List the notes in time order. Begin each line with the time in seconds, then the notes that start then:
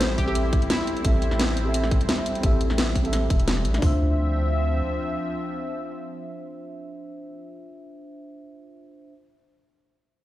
Already playing: A1 G3 C4 E4 G4 A4 C5 E5
0.01 snare, closed hi-hat
0.18 G4, kick, open hi-hat
0.24 C4 G4 A4
0.30 E5
0.35 closed hi-hat
0.53 kick, closed hi-hat
0.62 closed hi-hat
0.70 E4, snare, closed hi-hat
0.87 closed hi-hat
0.97 closed hi-hat
1.02 A1 C4 G4 A4, kick, closed hi-hat
1.07 E5
1.22 closed hi-hat
1.31 snare
1.39 snare, closed hi-hat
1.57 closed hi-hat
1.63 C4 G4 A4
1.69 E5
1.74 closed hi-hat
1.83 snare
1.91 kick, closed hi-hat
2.01 closed hi-hat
2.09 snare, closed hi-hat
2.18 snare
2.26 closed hi-hat
2.35 closed hi-hat
2.41 A1 C4 G4 A4, kick, closed hi-hat
2.46 E5
2.61 closed hi-hat
2.70 snare
2.78 snare, closed hi-hat
2.95 kick, open hi-hat
3.02 C4 G4 A4, closed hi-hat
3.07 E5
3.13 snare, closed hi-hat
3.30 E1, kick, closed hi-hat
3.40 closed hi-hat
3.48 snare, closed hi-hat
3.57 snare
3.65 A1, closed hi-hat
3.74 snare, closed hi-hat
3.78 D2 F3 C4 D4 F4 E5, kick, floor tom, open hi-hat
3.84 C5 E5